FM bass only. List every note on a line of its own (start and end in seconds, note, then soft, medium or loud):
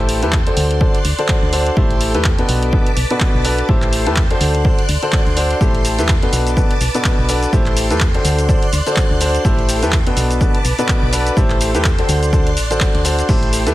0.00 0.24 A1 loud
0.23 0.50 E2 medium
0.57 0.86 D2 medium
1.05 1.13 D2 medium
1.43 1.70 D2 medium
1.77 2.16 A1 loud
2.15 2.42 E2 medium
2.49 2.78 B1 medium
2.97 3.05 B1 medium
3.35 3.62 B1 medium
3.69 4.08 A1 loud
4.07 4.34 E2 medium
4.41 4.70 D2 medium
4.89 4.97 D2 medium
5.27 5.54 D2 medium
5.61 6.00 A1 loud
5.99 6.26 E2 medium
6.33 6.62 B1 medium
6.81 6.89 B1 medium
7.19 7.46 B1 medium
7.53 7.92 A1 loud
7.91 8.18 E2 medium
8.25 8.54 D2 loud
8.73 8.81 D2 medium
9.11 9.38 D2 medium
9.45 9.84 A1 loud
9.83 10.10 E2 medium
10.17 10.46 B1 medium
10.65 10.73 B1 medium
11.03 11.30 B1 medium
11.37 11.76 A1 loud
11.75 12.02 E2 medium
12.09 12.58 D2 medium
12.57 12.86 A1 medium
12.95 13.22 D2 medium
13.29 13.68 A1 loud
13.67 13.74 E2 medium